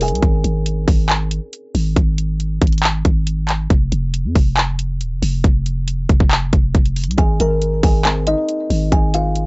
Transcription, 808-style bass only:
0.00 0.13 F1 loud
0.12 0.22 C2 loud
0.23 0.43 G#1 loud
0.44 0.86 G#1 loud
0.88 1.40 G#1 loud
1.75 1.96 G#1 loud
1.96 2.59 G#1 loud
2.62 3.03 G#1 loud
3.05 3.68 G#1 loud
3.70 3.91 F1 loud
3.92 4.26 F1 loud
4.25 4.35 F2 loud
4.36 5.02 F1 loud
5.01 5.13 D#1 loud
5.12 5.22 F1 loud
5.22 5.43 F1 loud
5.44 6.07 F1 loud
6.09 6.20 F1 loud
6.20 6.52 F1 loud
6.53 6.74 F1 loud
6.75 7.09 F1 loud
7.07 7.18 C2 loud
7.18 7.39 G#1 loud
7.40 7.82 G#1 loud
7.83 8.36 G#1 loud
8.70 8.91 G#1 loud
8.92 9.46 G#1 loud

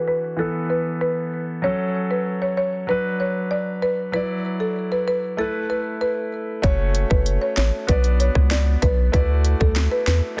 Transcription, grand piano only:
0.00 0.35 E3 medium
0.00 0.36 D4 medium
0.00 0.37 F#4 medium
0.37 1.60 E3 medium
0.37 1.61 B3 medium
0.37 1.62 A4 medium
1.62 2.85 F#3 medium
1.62 2.86 C#4 medium
1.62 2.87 A4 medium
2.87 4.10 F#3 medium
2.87 4.11 D4 medium
2.87 4.12 B4 medium
4.12 5.35 F#3 medium
4.12 5.36 E4 medium
4.12 5.37 D5 medium
5.37 6.60 A3 medium
5.37 6.61 E4 medium
5.37 6.62 B4 medium
6.62 7.85 A3 medium
6.62 7.86 C#4 medium
6.62 7.87 F#4 medium
6.62 7.87 C#5 medium
7.87 9.10 B3 medium
7.87 9.11 D4 medium
7.87 9.12 F#4 medium
7.87 9.12 D5 medium
9.12 10.35 A3 medium
9.12 10.36 E4 medium
9.12 10.37 F#4 medium
9.12 10.37 D5 medium
10.37 10.40 A3 medium

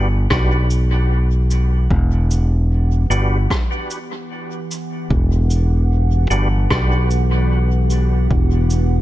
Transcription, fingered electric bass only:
0.00 0.26 G1 medium
0.30 1.87 B1 medium
1.91 3.07 E1 medium
3.10 3.46 G1 medium
5.10 6.27 E1 loud
6.30 6.66 G1 medium
6.71 8.27 B1 medium
8.30 9.02 E1 medium

